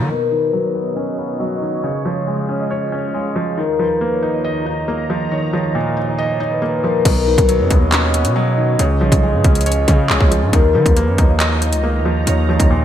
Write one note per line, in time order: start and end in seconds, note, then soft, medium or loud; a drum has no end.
0.00 0.12 D#3 medium
0.00 0.12 F3 medium
0.00 0.12 A#3 medium
0.00 0.12 D#4 loud
0.00 0.12 D#5 loud
0.00 0.37 A#5 medium
0.00 0.49 C#6 medium
0.00 0.29 D#6 medium
0.10 1.18 B2 medium
0.10 1.82 B2 medium
0.10 1.82 B3 medium
0.10 1.82 D#4 medium
0.10 0.37 A#4 loud
0.10 3.54 C#5 medium
0.31 1.40 D#3 medium
0.31 2.36 B4 medium
0.53 1.39 F#3 medium
0.64 1.83 C#5 medium
0.75 1.17 B3 medium
0.86 1.39 D#5 medium
0.97 1.84 C#4 loud
1.18 1.84 B3 medium
1.18 2.38 F5 medium
1.40 1.84 F#3 medium
1.40 2.05 D#5 medium
1.62 1.84 D#3 medium
1.83 2.92 C#3 medium
1.83 3.56 C#3 medium
1.83 3.56 G#3 medium
1.83 7.01 F4 medium
1.83 2.92 C#5 loud
2.05 3.14 F3 medium
2.05 2.60 D#5 medium
2.27 3.13 G#3 medium
2.38 4.04 F5 medium
2.49 2.91 C#4 medium
2.60 3.14 D#5 medium
2.71 3.58 C#5 loud
2.92 3.57 C#4 medium
2.92 4.12 C#5 medium
3.14 3.58 G#3 medium
3.14 4.33 D#5 medium
3.36 3.57 F3 medium
3.57 7.02 D#2 medium
3.57 4.66 D#3 medium
3.57 7.02 D#3 medium
3.57 3.85 A#4 medium
3.57 7.02 A#5 medium
3.79 4.88 F3 medium
3.79 5.84 B4 medium
4.01 4.86 A#3 medium
4.12 5.31 C#5 medium
4.23 4.65 D#4 medium
4.34 4.88 D#5 medium
4.44 5.53 D#5 medium
4.66 5.75 D#4 medium
4.66 5.86 F5 medium
4.88 5.97 A#3 medium
4.88 5.53 D#5 medium
5.10 5.52 F3 medium
5.31 6.40 D#3 medium
5.31 6.18 C#5 loud
5.53 6.62 F3 medium
5.53 6.07 D#5 medium
5.75 6.84 A#2 medium
5.86 7.52 F5 medium
5.97 6.39 D#4 medium
6.07 7.81 D#5 medium
6.18 7.59 C#5 medium
6.18 7.05 D#5 medium
6.40 7.05 D#4 medium
6.51 6.89 B4 medium
6.62 7.05 A#3 medium
6.83 7.05 F3 medium
6.83 7.05 A#4 medium
7.05 7.37 B1 loud
7.05 8.14 B2 medium
7.05 8.78 B3 medium
7.05 8.78 F#4 medium
7.05 7.33 A#4 loud
7.05 8.78 C#5 medium
7.05 8.78 D#5 medium
7.05 kick loud
7.05 closed hi-hat medium
7.05 crash loud
7.27 8.36 D#3 medium
7.27 9.32 B4 medium
7.38 7.61 B1 loud
7.38 kick loud
7.38 closed hi-hat medium
7.49 8.34 F#3 medium
7.49 closed hi-hat medium
7.59 7.70 F#2 loud
7.59 8.79 C#5 medium
7.71 8.26 D#2 loud
7.71 8.12 B3 medium
7.71 kick loud
7.71 closed hi-hat medium
7.81 8.35 D#5 medium
7.92 8.79 C#4 loud
7.92 clap loud
7.92 closed hi-hat medium
8.14 8.79 B3 medium
8.14 9.33 F5 medium
8.14 closed hi-hat medium
8.25 8.77 B2 loud
8.25 closed hi-hat medium
8.35 8.79 F#3 medium
8.35 9.01 D#5 loud
8.57 8.79 D#3 medium
8.79 9.03 C#2 loud
8.79 9.88 C#3 loud
8.79 10.51 C#3 medium
8.79 10.51 C#4 medium
8.79 12.85 F4 medium
8.79 10.51 G#4 medium
8.79 9.88 C#5 loud
8.79 closed hi-hat medium
9.01 9.11 B1 loud
9.01 10.10 F3 medium
9.01 9.55 D#5 medium
9.12 9.35 B1 loud
9.12 kick loud
9.12 closed hi-hat medium
9.23 10.08 G#3 medium
9.34 9.44 G#2 loud
9.34 11.00 F5 medium
9.44 9.86 C#2 loud
9.44 9.86 C#4 medium
9.44 kick loud
9.44 closed hi-hat medium
9.55 10.09 D#5 medium
9.55 closed hi-hat medium
9.61 closed hi-hat medium
9.66 10.53 C#5 loud
9.66 closed hi-hat medium
9.72 closed hi-hat medium
9.88 10.11 C#3 loud
9.88 10.53 C#4 medium
9.88 11.07 C#5 medium
9.88 kick medium
9.88 closed hi-hat medium
10.10 10.20 B1 loud
10.10 10.53 G#3 medium
10.10 11.29 D#5 medium
10.10 clap loud
10.21 10.44 C#2 loud
10.21 kick loud
10.31 10.53 F3 medium
10.31 closed hi-hat medium
10.42 10.53 G#2 loud
10.53 10.76 D#2 loud
10.53 11.62 D#3 loud
10.53 12.85 D#3 medium
10.53 12.85 D#4 medium
10.53 10.81 A#4 loud
10.53 12.85 A#5 medium
10.53 kick loud
10.53 closed hi-hat medium
10.75 10.85 D#3 loud
10.75 11.84 F3 medium
10.75 12.80 B4 medium
10.86 11.09 D#2 loud
10.86 kick loud
10.86 closed hi-hat medium
10.97 11.82 A#3 medium
10.97 closed hi-hat medium
11.07 11.18 F#2 loud
11.07 12.27 C#5 medium
11.18 11.74 D#2 loud
11.18 11.60 D#4 medium
11.18 kick loud
11.18 closed hi-hat medium
11.29 11.83 D#5 medium
11.40 12.49 D#5 medium
11.40 clap loud
11.40 closed hi-hat medium
11.62 12.71 D#4 medium
11.62 12.81 F5 medium
11.62 closed hi-hat medium
11.73 12.01 C#2 loud
11.73 closed hi-hat medium
11.84 12.85 A#3 medium
11.84 12.49 D#5 medium
12.00 12.26 D#2 loud
12.05 12.47 F3 medium
12.27 12.58 D#2 loud
12.27 12.85 D#3 medium
12.27 12.85 C#5 loud
12.27 closed hi-hat medium
12.49 12.85 F3 medium
12.49 12.85 D#5 medium
12.60 12.83 D#2 loud
12.60 kick medium
12.60 closed hi-hat medium
12.70 12.85 A#2 medium
12.81 12.85 C#2 loud
12.81 12.85 F5 medium